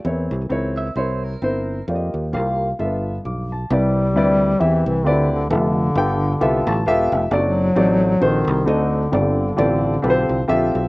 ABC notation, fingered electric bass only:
X:1
M:4/4
L:1/8
Q:"Swing" 1/4=133
K:Cdor
V:1 name="Fingered electric bass" clef=bass
=E,, C,, _D,,2 C,,2 G,,,2 | F,, E,, C,,2 G,,,2 =B,,,2 | [K:C] C,,2 D,,2 E,, C,, D,,2 | F,,,2 G,,,2 C,, A,,, E,,, F,,, |
^F,,,2 A,,,2 _B,,, C,, D,,2 | G,,,2 A,,,2 B,,, C,, _B,,, =B,,, |]